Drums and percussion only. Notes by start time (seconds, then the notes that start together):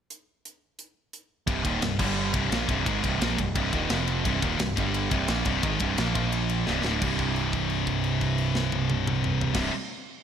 0.10 closed hi-hat
0.45 closed hi-hat
0.79 closed hi-hat
1.13 closed hi-hat
1.48 kick, ride
1.65 kick, ride
1.82 snare, ride
1.99 kick, crash
2.34 kick, ride
2.52 snare, ride
2.69 kick, ride
2.86 kick, ride
3.04 kick, ride
3.21 snare, ride
3.39 kick, ride
3.55 kick, ride
3.73 kick, ride
3.90 snare, ride
4.07 ride
4.25 kick, ride
4.42 kick, ride
4.59 snare, ride
4.77 kick, ride
4.94 ride
5.11 kick, ride
5.28 snare, ride
5.45 kick, ride
5.63 kick, ride
5.80 kick, ride
5.98 snare, ride
6.15 kick, ride
6.32 ride
6.49 ride
6.67 snare
6.85 snare
7.02 kick, crash
7.19 kick, crash
7.36 crash
7.53 kick, crash
7.70 crash
7.87 kick, crash
8.04 crash
8.21 kick, crash
8.38 crash
8.55 snare
8.72 high tom
8.90 high tom
9.07 mid tom
9.24 mid tom
9.41 floor tom
9.54 kick, snare, crash